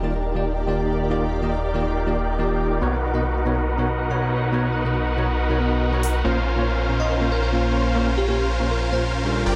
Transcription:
Already playing: D#1 D#3 A#3 D#4 F4 G4 A#4 D5 G5
0.02 D#3 A#3 F4 G4 D5
0.35 D#3 A#3 F4 G4 D5
0.67 D#3 A#3 F4 G4 D5
1.10 D#3 A#3 F4 G4 D5
1.42 D#3 A#3 F4 G4 D#5
1.74 D#3 A#3 F4 G4 D5
2.06 D#3 A#3 F4 G4 D5
2.38 D#3 A#3 F4 G4 D5
2.81 B1 B2 B3 D#4 F#4 A#4 B4 C#5 F#5
3.13 B2 B3 D#4 A#4 D#5
3.45 B2 B3 D#4 A#4 C#5
3.77 B2 B3 D#4 A#4 C#5
4.09 B2 B3 D#4 C#5 A#5
4.52 B2 B3 D#4 A#4 C#5
4.84 B2 B3 D#4 A#4 D#5
5.17 B2 B3 D#4 A#4 C#5
5.49 B2 B3 D#4 A#4 C#5
5.60 B2 B3 D#4 A#4 D#5
5.92 B2 B3 D#4 A#4 C#5
6.03 open hi-hat
6.24 A#1 A#2 A#3 C#4 F4 A#4 C5 F5
6.56 A#2 A#3 C#4 F4 C#5
6.88 A#2 A#3 C#4 F4 C5
7.00 D#5
7.20 A#2 A#3 C#4 F4 C5
7.32 A#4
7.43 A#4
7.52 A#2 A#3 C#4 F4 C5
7.95 A#2 A#3 C#4 F4 C5
8.17 G4
8.27 A#2 A#3 C#4 F4 G4 C#5
8.59 A#2 A#3 C#4 F4 C5
8.71 A#4
8.82 A#4
8.92 A#2 A#3 C#4 F4 C5
9.24 G3 D4 F4 A4 A#4
9.46 G1 G3 D4 F4 G4 A#4 D5 G5 A5

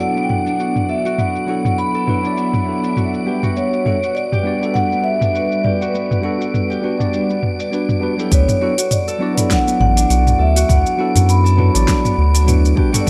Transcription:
Already playing: F#3 B3 D4 E4 F#4 A4 F#5 D7
0.00 D4 F#5, shaker
0.16 B3, shaker
0.23 G5
0.29 F#5, mid tom
0.46 D4, shaker
0.59 F#4, shaker
0.76 mid tom, shaker
0.89 A4 E5
1.05 F#4, shaker
1.18 B3 E5 F#5, mid tom, shaker
1.36 shaker
1.47 F#3 B3 D4 E4 F#4 A4
1.65 F#4, mid tom, shaker
1.78 B5, shaker
1.95 A4, shaker
2.06 F#3 B3 D4 E4 F#4 B4, mid tom
2.23 F#3 B3 D4 E4 D5, shaker
2.37 D4, shaker
2.54 B3, mid tom, shaker
2.65 F#3 B3 D4 E4 A4
2.83 D4, shaker
2.96 F#4, mid tom, shaker
3.14 shaker
3.25 G3 B3 D4 G4 B4 F#5
3.43 F#4, mid tom, shaker
3.56 B3 C#5, shaker
3.73 shaker
3.84 G3 B3 D4 F#4 A4, mid tom
4.03 F#4, shaker
4.15 D5, shaker
4.32 G4, mid tom, shaker
4.43 G3 B3 D4 F#4 D5
4.58 G3 B3 D4
4.63 A4 F#5, shaker
4.74 D4 F#5, mid tom, shaker
4.92 B3, shaker
5.04 E5
5.21 D4, mid tom, shaker
5.35 F#4, shaker
5.52 shaker
5.64 G4 D5, mid tom
5.81 F#4, shaker
5.94 B3, shaker
6.11 mid tom, shaker
6.22 G3 B3 D4 F#4 A4 F#5
6.40 F#4, shaker
6.54 mid tom, shaker
6.70 G4, shaker
6.82 G3 B3 D4 F#4 B4
6.98 G3 B3 D4 D5 F#5, mid tom, shaker
7.13 D4, shaker
7.30 B3, shaker
7.43 mid tom
7.59 D5, shaker
7.70 G3 B3 D4 F#4 B4, shaker
7.89 mid tom, shaker
8.00 G3 B3 D4 F#4 B4
8.17 F#3 B3 D4 E4 G4 A4, shaker
8.31 D2 B3 C#5 D7, kick, open hi-hat, shaker
8.48 mid tom, shaker
8.60 F#3 B3 D4 E4 F#4 A4
8.78 F#4, open hi-hat, shaker
8.91 D5, mid tom, open hi-hat, shaker
9.08 A4, shaker
9.19 F#3 B3 D4 E4 F#4 D5
9.33 F#3 B3 D4
9.38 E4 A4, mid tom, open hi-hat, shaker
9.50 D4 F#5, kick, snare, open hi-hat, shaker
9.67 B3, shaker
9.80 A1 F#5, mid tom
9.96 D4, open hi-hat, shaker
10.09 B1 F#4, open hi-hat, shaker
10.27 mid tom, shaker
10.39 D2 A4 E5
10.56 F#4, open hi-hat, shaker
10.69 D2 B3 F#5, kick, mid tom, open hi-hat, shaker
10.86 shaker
10.97 F#3 B3 D4 E4 F#4 A4
11.15 F#2 F#4, mid tom, open hi-hat, shaker
11.29 B5, open hi-hat, shaker
11.44 A4, shaker
11.56 F#3 B3 D4 E4 F#4 B4, mid tom
11.73 A1 F#3 B3 D4 E4 D5, open hi-hat, shaker
11.87 D4, kick, snare, open hi-hat, shaker
12.04 B3, mid tom, shaker
12.18 D2
12.34 D4, open hi-hat, shaker
12.45 F#3 B3 D4 E4 F#4 B4, mid tom, open hi-hat, shaker
12.65 shaker
12.75 G3 B3 D4 F#4 G4 B4, kick
12.92 G3 B3 D4 F#4 A4 F#5, mid tom, open hi-hat, shaker
13.01 D5
13.06 B3, kick

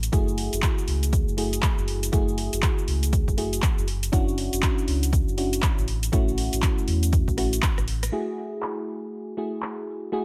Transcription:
0.03 closed hi-hat, cabasa
0.12 F#1 A3 E4 F#4 G#4, kick, closed hi-hat, cabasa
0.28 cabasa
0.38 open hi-hat
0.53 F#1, closed hi-hat, cabasa
0.62 kick, clap, closed hi-hat, cabasa
0.78 cabasa
0.88 C#2, open hi-hat
1.03 closed hi-hat, cabasa
1.13 kick, closed hi-hat, cabasa
1.28 F#1, cabasa
1.37 A3 E4 F#4 G#4, open hi-hat
1.53 closed hi-hat, cabasa
1.62 kick, clap, closed hi-hat, cabasa
1.78 F#1, cabasa
1.88 open hi-hat
2.03 closed hi-hat, cabasa
2.12 F#1 A3 E4 F#4 G#4, kick, closed hi-hat, cabasa
2.28 cabasa
2.38 open hi-hat
2.53 F#1, closed hi-hat, cabasa
2.62 kick, clap, closed hi-hat, cabasa
2.78 cabasa
2.88 C#2, open hi-hat
3.03 closed hi-hat, cabasa
3.13 kick, closed hi-hat, cabasa
3.28 F#1, kick, cabasa
3.37 A3 E4 F#4 G#4, open hi-hat
3.53 closed hi-hat, cabasa
3.62 kick, clap, closed hi-hat, cabasa
3.78 F#1, cabasa
3.88 open hi-hat
4.03 closed hi-hat, cabasa
4.12 F#1 C#4 D4 E4 F#4, kick, closed hi-hat, cabasa
4.28 cabasa
4.38 open hi-hat
4.53 F#1, closed hi-hat, cabasa
4.62 kick, clap, closed hi-hat, cabasa
4.78 cabasa
4.88 C#2, open hi-hat
5.03 closed hi-hat, cabasa
5.13 kick, closed hi-hat, cabasa
5.28 F#1, cabasa
5.37 C#4 D4 E4 F#4, open hi-hat
5.53 closed hi-hat, cabasa
5.62 kick, clap, closed hi-hat, cabasa
5.78 A1, cabasa
5.88 open hi-hat
6.03 closed hi-hat, cabasa
6.12 A1 A3 C#4 E4 F#4, kick, closed hi-hat, cabasa
6.28 cabasa
6.38 open hi-hat
6.53 A1, closed hi-hat, cabasa
6.62 kick, clap, closed hi-hat, cabasa
6.78 cabasa
6.88 E2, open hi-hat
7.03 closed hi-hat, cabasa
7.13 kick, closed hi-hat, cabasa
7.28 A1, kick, cabasa
7.37 A3 C#4 E4 F#4, cross-stick, open hi-hat
7.53 closed hi-hat, cabasa
7.62 kick, cross-stick, clap, closed hi-hat, cabasa
7.78 A1, cross-stick, cabasa
7.88 open hi-hat
8.03 cross-stick, closed hi-hat, cabasa
8.12 A3 E4 F#4 G#4
8.62 clap
9.37 A3 E4 F#4 G#4
9.62 clap
10.12 A3 E4 F#4 G#4

